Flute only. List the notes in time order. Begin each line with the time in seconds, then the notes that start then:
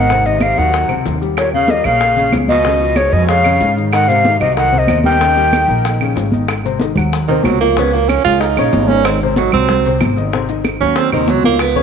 Already playing: F#5
0.26 D#5
0.42 F5
0.58 F#5
1.38 C#5
1.53 F5
1.70 D#5
1.85 F5
2.49 D#5
2.97 C#5
3.13 D#5
3.29 F5
3.93 F#5
4.08 F5
4.40 D#5
4.57 F#5
4.78 D#5
5.05 G5